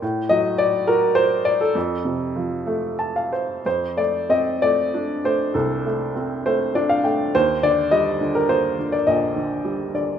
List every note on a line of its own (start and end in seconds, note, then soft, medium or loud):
0.02 1.72 A2 medium
0.29 1.42 F#3 medium
0.29 0.60 D#5 medium
0.58 0.88 D5 medium
0.87 1.73 F#4 medium
0.87 1.17 A#4 medium
1.15 1.43 C5 medium
1.45 1.61 D5 medium
1.61 2.96 A4 medium
1.75 3.61 F2 medium
2.05 3.29 C3 soft
2.36 3.61 F3 soft
2.67 3.62 A3 medium
2.99 3.15 A5 medium
3.16 3.32 F5 medium
3.33 3.63 C5 medium
3.65 5.51 F2 soft
3.65 3.99 C5 medium
3.97 4.61 A3 soft
3.97 4.31 D5 medium
4.29 5.51 C4 soft
4.29 4.60 D#5 medium
4.62 5.23 A3 soft
4.62 5.20 D5 medium
4.94 6.12 D4 soft
5.24 5.84 A3 soft
5.24 5.56 C5 medium
5.54 7.31 C2 medium
5.54 7.01 A4 medium
5.86 6.45 A3 soft
6.16 7.31 C4 soft
6.46 7.03 A3 medium
6.46 6.74 C5 medium
6.75 7.32 D4 medium
6.75 6.89 D5 medium
6.89 7.04 F5 medium
7.04 7.33 A3 soft
7.04 7.32 G5 medium
7.35 9.03 D#2 medium
7.35 7.62 C5 medium
7.63 8.19 D3 medium
7.63 7.93 D5 medium
7.91 9.04 G3 medium
7.91 8.36 D#5 medium
8.21 8.77 D3 medium
8.35 8.48 A#4 medium
8.49 9.62 A#3 medium
8.49 8.94 C5 medium
8.79 9.35 D3 soft
8.92 9.06 D5 medium
9.07 10.19 A#1 medium
9.07 9.91 D#5 medium
9.36 9.93 D3 soft
9.65 10.19 G3 soft
9.94 10.19 D3 soft
9.94 10.19 D5 medium